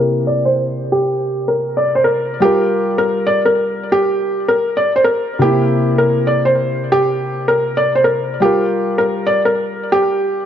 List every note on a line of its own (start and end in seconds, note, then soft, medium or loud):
0.00 2.37 C3 medium
0.00 2.38 A#3 medium
0.00 2.39 E4 medium
0.00 0.25 A#4 medium
0.27 0.42 D5 medium
0.45 0.89 C5 medium
0.92 1.45 G4 medium
1.48 1.75 A#4 medium
1.77 1.92 D5 medium
1.95 2.02 C5 medium
2.04 2.40 A#4 medium
2.40 5.37 G3 medium
2.40 5.38 F4 medium
2.40 2.95 G4 loud
2.45 5.39 A#4 medium
2.98 3.25 A#4 medium
3.27 3.41 D5 medium
3.45 3.89 A#4 medium
3.92 4.45 G4 loud
4.48 4.75 A#4 medium
4.77 4.92 D5 medium
4.96 5.03 C5 medium
5.04 5.40 A#4 medium
5.39 8.36 C3 medium
5.39 8.38 A#3 medium
5.39 5.95 G4 loud
5.44 8.39 E4 medium
5.98 6.25 A#4 medium
6.27 6.42 D5 medium
6.45 6.89 C5 medium
6.92 7.45 G4 loud
7.48 7.75 A#4 medium
7.77 7.92 D5 medium
7.95 8.02 C5 medium
8.04 8.40 A#4 medium
8.40 10.46 G3 medium
8.40 10.46 F4 medium
8.40 8.95 G4 loud
8.45 10.46 A#4 medium
8.98 9.25 A#4 medium
9.27 9.41 D5 medium
9.45 9.89 A#4 medium
9.92 10.45 G4 loud